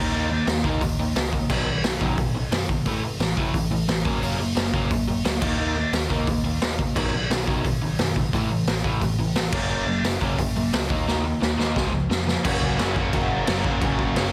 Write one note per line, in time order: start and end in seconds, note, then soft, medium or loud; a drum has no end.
0.00 0.11 D#3 medium
0.00 0.12 A#3 medium
0.00 0.12 D#4 loud
0.13 0.36 D#2 medium
0.13 0.29 D#3 medium
0.13 0.29 A#3 medium
0.13 0.29 D#4 medium
0.30 0.45 D#3 medium
0.30 0.46 A#3 medium
0.47 0.59 D#2 medium
0.47 0.62 D#3 medium
0.47 0.63 A#3 medium
0.47 snare loud
0.47 open hi-hat medium
0.64 0.76 D#2 medium
0.64 0.80 D#3 medium
0.64 0.80 A#3 medium
0.64 0.81 D#4 loud
0.64 kick medium
0.81 0.93 D#2 medium
0.81 0.97 D#3 medium
0.81 0.97 A#3 medium
0.81 kick loud
0.81 open hi-hat medium
0.99 1.10 D#2 medium
0.99 1.14 D#3 medium
0.99 1.14 A#3 medium
1.16 1.39 C#2 medium
1.16 1.31 D#3 medium
1.16 1.31 A#3 medium
1.16 snare loud
1.16 open hi-hat medium
1.33 1.48 D#3 medium
1.33 1.49 A#3 medium
1.33 kick medium
1.50 1.61 B1 medium
1.50 1.66 B2 loud
1.50 1.66 D#3 medium
1.50 1.67 F#3 loud
1.50 kick loud
1.50 crash loud
1.67 1.79 B1 medium
1.67 1.83 B2 medium
1.67 1.83 D#3 medium
1.84 1.96 B1 medium
1.84 2.00 B2 medium
1.84 2.00 D#3 medium
1.84 snare loud
1.84 open hi-hat medium
2.01 2.13 B1 medium
2.01 2.17 B2 medium
2.01 2.17 D#3 medium
2.01 2.17 F#3 medium
2.01 kick medium
2.17 2.30 B1 medium
2.17 2.34 B2 medium
2.17 2.34 D#3 medium
2.17 kick loud
2.17 open hi-hat medium
2.34 2.46 B1 medium
2.34 2.50 B2 medium
2.34 2.50 D#3 medium
2.51 2.63 F#2 medium
2.51 2.67 B2 medium
2.51 2.67 D#3 medium
2.51 snare loud
2.51 open hi-hat medium
2.69 2.81 B1 medium
2.69 2.85 B2 medium
2.69 2.85 D#3 medium
2.69 kick medium
2.85 3.09 A1 medium
2.85 3.02 A2 medium
2.85 3.02 E3 medium
2.85 3.03 A3 loud
2.85 kick loud
2.85 open hi-hat medium
3.03 3.19 A2 medium
3.03 3.19 E3 medium
3.20 3.31 A1 medium
3.20 3.35 A2 medium
3.20 3.36 E3 medium
3.20 snare loud
3.20 open hi-hat medium
3.37 3.49 A1 medium
3.37 3.53 A2 medium
3.37 3.53 E3 medium
3.37 3.54 A3 medium
3.37 kick medium
3.54 3.66 A1 loud
3.54 3.70 A2 medium
3.54 3.70 E3 medium
3.54 kick loud
3.54 open hi-hat medium
3.71 3.83 A1 medium
3.71 3.87 A2 medium
3.71 3.87 E3 medium
3.88 4.00 A1 medium
3.88 4.04 A2 medium
3.88 4.04 E3 medium
3.88 snare loud
3.88 open hi-hat medium
4.05 4.17 F#1 medium
4.05 4.21 F#3 medium
4.05 4.21 A#3 loud
4.05 4.22 C#4 loud
4.05 kick loud
4.22 4.34 F#1 medium
4.22 4.38 F#3 medium
4.22 4.38 A#3 loud
4.22 4.39 C#4 medium
4.22 open hi-hat medium
4.39 4.51 F#1 medium
4.39 4.54 F#3 medium
4.39 4.55 A#3 medium
4.55 4.68 F#1 medium
4.55 4.71 F#3 medium
4.55 4.72 A#3 medium
4.55 snare loud
4.55 open hi-hat medium
4.73 4.85 F#1 medium
4.73 4.89 F#3 medium
4.73 4.90 A#3 loud
4.73 4.90 C#4 medium
4.73 kick medium
4.90 5.02 F#1 loud
4.90 5.06 F#3 medium
4.90 5.06 A#3 medium
4.90 kick loud
4.90 open hi-hat medium
5.08 5.19 F#1 medium
5.08 5.23 F#3 medium
5.08 5.24 A#3 medium
5.25 5.37 D2 medium
5.25 5.40 F#3 medium
5.25 5.40 A#3 medium
5.25 snare loud
5.25 open hi-hat medium
5.41 5.53 D#2 medium
5.41 5.58 D#3 medium
5.41 5.58 A#3 medium
5.41 5.58 D#4 loud
5.41 kick loud
5.41 crash medium
5.59 5.82 D#2 medium
5.59 5.75 D#3 medium
5.59 5.75 A#3 medium
5.59 5.75 D#4 medium
5.76 5.91 D#3 medium
5.76 5.92 A#3 medium
5.92 6.04 D#2 medium
5.92 6.08 D#3 medium
5.92 6.09 A#3 medium
5.92 snare loud
5.92 open hi-hat medium
6.10 6.22 D#2 medium
6.10 6.26 D#3 medium
6.10 6.26 A#3 loud
6.10 6.26 D#4 medium
6.10 kick medium
6.27 6.39 D#2 medium
6.27 6.43 D#3 medium
6.27 6.43 A#3 medium
6.27 kick loud
6.27 open hi-hat medium
6.44 6.56 D#2 medium
6.44 6.60 D#3 medium
6.44 6.60 A#3 medium
6.61 6.85 D#2 medium
6.61 6.77 D#3 medium
6.61 6.77 A#3 medium
6.61 snare loud
6.61 open hi-hat medium
6.79 6.94 D#3 medium
6.79 6.95 A#3 medium
6.79 kick medium
6.96 7.08 B1 medium
6.96 7.12 B2 medium
6.96 7.12 D#3 medium
6.96 7.12 F#3 medium
6.96 kick loud
6.96 crash medium
7.13 7.24 B1 medium
7.13 7.29 B2 medium
7.13 7.29 D#3 medium
7.30 7.41 B1 medium
7.30 7.46 B2 medium
7.30 7.46 D#3 medium
7.30 snare loud
7.30 open hi-hat medium
7.47 7.59 B1 medium
7.47 7.63 B2 medium
7.47 7.64 D#3 loud
7.47 7.64 F#3 loud
7.47 kick medium
7.64 7.76 B1 loud
7.64 7.80 B2 medium
7.64 7.81 D#3 medium
7.64 kick loud
7.64 open hi-hat medium
7.82 7.93 B1 medium
7.82 7.97 B2 medium
7.82 7.97 D#3 medium
7.99 8.10 F#2 medium
7.99 8.14 B2 medium
7.99 8.14 D#3 medium
7.99 snare loud
7.99 open hi-hat medium
8.16 8.28 B1 medium
8.16 8.31 B2 medium
8.16 8.32 D#3 medium
8.16 kick medium
8.33 8.56 A1 medium
8.33 8.49 A2 medium
8.33 8.50 E3 medium
8.33 8.50 A3 loud
8.33 kick loud
8.33 open hi-hat medium
8.51 8.66 A2 medium
8.51 8.66 E3 medium
8.67 8.79 A1 medium
8.67 8.83 A2 medium
8.67 8.83 E3 medium
8.67 snare loud
8.67 open hi-hat medium
8.84 8.96 A1 medium
8.84 9.00 A2 medium
8.84 9.01 E3 medium
8.84 9.01 A3 loud
8.84 kick medium
9.01 9.13 A1 loud
9.01 9.17 A2 medium
9.01 9.17 E3 medium
9.01 kick loud
9.01 open hi-hat medium
9.19 9.31 A1 medium
9.19 9.34 A2 medium
9.19 9.34 E3 medium
9.35 9.47 A1 medium
9.35 9.52 A2 medium
9.35 9.52 E3 medium
9.35 snare loud
9.35 open hi-hat medium
9.52 9.64 F#1 medium
9.52 9.68 F#3 medium
9.52 9.69 A#3 medium
9.52 9.70 C#4 loud
9.52 kick loud
9.52 crash loud
9.69 9.82 F#1 medium
9.69 9.86 F#3 medium
9.69 9.86 A#3 medium
9.69 9.87 C#4 loud
9.86 9.98 F#1 medium
9.86 10.03 F#3 medium
9.86 10.03 A#3 medium
10.03 10.15 F#1 medium
10.03 10.19 F#3 medium
10.03 10.20 A#3 medium
10.03 snare loud
10.03 open hi-hat medium
10.21 10.33 F#1 medium
10.21 10.37 F#3 medium
10.21 10.37 A#3 medium
10.21 10.38 C#4 loud
10.21 kick medium
10.38 10.50 F#1 loud
10.38 10.54 F#3 medium
10.38 10.54 A#3 medium
10.38 kick loud
10.38 open hi-hat medium
10.55 10.67 F#1 medium
10.55 10.71 F#3 medium
10.55 10.71 A#3 medium
10.73 10.84 C#2 medium
10.73 10.88 F#3 medium
10.73 10.89 A#3 medium
10.73 snare loud
10.73 open hi-hat medium
10.89 11.02 D#2 medium
10.89 11.06 D#3 medium
10.89 11.06 A#3 medium
10.89 11.06 D#4 medium
10.89 kick loud
11.07 11.31 D#2 medium
11.07 11.23 D#3 medium
11.07 11.24 A#3 medium
11.07 11.24 D#4 loud
11.07 snare medium
11.25 11.40 D#3 medium
11.25 11.40 A#3 medium
11.42 11.54 D#2 medium
11.42 11.57 D#3 medium
11.42 11.57 A#3 medium
11.42 snare medium
11.58 11.70 D#2 medium
11.58 11.75 D#3 medium
11.58 11.75 A#3 medium
11.58 11.75 D#4 medium
11.58 snare medium
11.76 11.88 C#2 medium
11.76 11.92 C#3 medium
11.76 11.92 F3 medium
11.76 11.92 G#3 loud
11.76 kick loud
11.76 snare medium
11.93 12.05 C#2 medium
11.93 12.08 C#3 medium
11.93 12.09 F3 medium
12.10 12.33 F2 medium
12.10 12.25 C#3 medium
12.10 12.26 F3 medium
12.10 snare medium
12.27 12.43 C#3 medium
12.27 12.43 F3 medium
12.27 snare medium
12.44 12.61 F#1 medium
12.44 12.78 F#2 loud
12.44 12.77 C#3 loud
12.44 12.79 F#3 medium
12.44 12.79 A#3 loud
12.44 12.80 C#4 loud
12.44 12.79 F#4 loud
12.44 kick loud
12.44 crash loud
12.44 crash medium
12.62 12.78 C#2 medium
12.62 kick medium
12.78 12.95 F#1 medium
12.78 12.95 F#2 medium
12.78 12.95 C#3 medium
12.78 12.97 F#3 medium
12.78 12.96 A#3 medium
12.78 12.97 C#4 medium
12.78 12.97 F#4 medium
12.78 snare loud
12.78 crash medium
12.96 13.12 F#1 medium
12.96 13.12 F#2 medium
12.96 13.13 C#3 medium
12.96 13.14 F#3 medium
12.96 13.13 A#3 medium
12.96 13.14 C#4 loud
12.96 13.14 F#4 medium
12.96 kick medium
13.13 13.29 F#1 medium
13.13 13.46 F#2 medium
13.13 13.47 C#3 loud
13.13 13.48 F#3 loud
13.13 13.48 A#3 medium
13.13 13.48 C#4 loud
13.13 13.48 F#4 loud
13.13 kick loud
13.13 crash medium
13.30 13.46 F#1 medium
13.47 13.64 F#1 medium
13.47 13.63 F#2 medium
13.47 13.64 C#3 medium
13.47 13.65 F#3 medium
13.47 13.65 A#3 loud
13.47 13.65 C#4 loud
13.47 13.65 F#4 loud
13.47 snare loud
13.47 crash medium
13.64 13.80 F#1 medium
13.64 13.80 F#2 medium
13.64 13.81 C#3 medium
13.64 13.82 F#3 medium
13.64 13.82 A#3 medium
13.64 13.82 C#4 medium
13.64 13.82 F#4 medium
13.64 kick loud
13.81 13.97 F#1 medium
13.81 14.15 F#2 loud
13.81 14.15 C#3 loud
13.81 14.17 F#3 loud
13.81 14.16 A#3 loud
13.81 14.17 C#4 loud
13.81 14.17 F#4 loud
13.81 kick loud
13.81 crash medium
13.99 14.15 F#1 medium
13.99 kick medium
14.15 14.32 F#1 medium
14.15 14.32 F#2 medium
14.15 14.32 C#3 medium
14.15 14.32 F#3 medium
14.15 14.32 A#3 medium
14.15 14.32 C#4 medium
14.15 14.32 F#4 loud
14.15 snare loud
14.15 crash medium